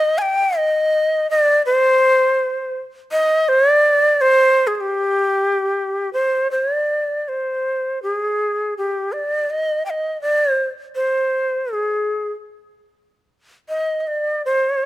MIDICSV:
0, 0, Header, 1, 2, 480
1, 0, Start_track
1, 0, Tempo, 761421
1, 332, Time_signature, 2, 2, 24, 8
1, 802, Tempo, 731707
1, 3202, Tempo, 792602
1, 4642, Tempo, 732601
1, 7042, Tempo, 773196
1, 8962, Tempo, 741656
1, 9474, End_track
2, 0, Start_track
2, 0, Title_t, "Shakuhachi"
2, 0, Program_c, 0, 77
2, 0, Note_on_c, 0, 75, 109
2, 114, Note_on_c, 0, 80, 83
2, 123, Note_off_c, 0, 75, 0
2, 137, Note_on_c, 0, 79, 91
2, 143, Note_off_c, 0, 80, 0
2, 362, Note_on_c, 0, 75, 89
2, 371, Note_off_c, 0, 79, 0
2, 818, Note_off_c, 0, 75, 0
2, 824, Note_on_c, 0, 74, 88
2, 1032, Note_off_c, 0, 74, 0
2, 1056, Note_on_c, 0, 72, 101
2, 1805, Note_off_c, 0, 72, 0
2, 2011, Note_on_c, 0, 75, 95
2, 2254, Note_on_c, 0, 72, 105
2, 2264, Note_off_c, 0, 75, 0
2, 2392, Note_off_c, 0, 72, 0
2, 2392, Note_on_c, 0, 74, 105
2, 2730, Note_on_c, 0, 72, 96
2, 2740, Note_off_c, 0, 74, 0
2, 3032, Note_on_c, 0, 68, 57
2, 3042, Note_off_c, 0, 72, 0
2, 3087, Note_off_c, 0, 68, 0
2, 3087, Note_on_c, 0, 68, 75
2, 3120, Note_on_c, 0, 67, 82
2, 3126, Note_off_c, 0, 68, 0
2, 3926, Note_off_c, 0, 67, 0
2, 3930, Note_on_c, 0, 72, 73
2, 4154, Note_off_c, 0, 72, 0
2, 4160, Note_on_c, 0, 72, 62
2, 4294, Note_off_c, 0, 72, 0
2, 4294, Note_on_c, 0, 74, 62
2, 4627, Note_on_c, 0, 72, 63
2, 4636, Note_off_c, 0, 74, 0
2, 5108, Note_off_c, 0, 72, 0
2, 5112, Note_on_c, 0, 67, 62
2, 5184, Note_off_c, 0, 67, 0
2, 5184, Note_on_c, 0, 68, 62
2, 5582, Note_off_c, 0, 68, 0
2, 5605, Note_on_c, 0, 67, 62
2, 5832, Note_on_c, 0, 74, 64
2, 5842, Note_off_c, 0, 67, 0
2, 6079, Note_on_c, 0, 75, 75
2, 6089, Note_off_c, 0, 74, 0
2, 6308, Note_off_c, 0, 75, 0
2, 6312, Note_on_c, 0, 79, 62
2, 6341, Note_on_c, 0, 75, 67
2, 6347, Note_off_c, 0, 79, 0
2, 6538, Note_off_c, 0, 75, 0
2, 6547, Note_on_c, 0, 74, 76
2, 6737, Note_off_c, 0, 74, 0
2, 6737, Note_on_c, 0, 72, 76
2, 6842, Note_off_c, 0, 72, 0
2, 7031, Note_on_c, 0, 72, 73
2, 7513, Note_on_c, 0, 68, 54
2, 7522, Note_off_c, 0, 72, 0
2, 7875, Note_off_c, 0, 68, 0
2, 8728, Note_on_c, 0, 75, 62
2, 8924, Note_off_c, 0, 75, 0
2, 8924, Note_on_c, 0, 75, 51
2, 8968, Note_on_c, 0, 74, 67
2, 8978, Note_off_c, 0, 75, 0
2, 9206, Note_off_c, 0, 74, 0
2, 9215, Note_on_c, 0, 72, 74
2, 9474, Note_off_c, 0, 72, 0
2, 9474, End_track
0, 0, End_of_file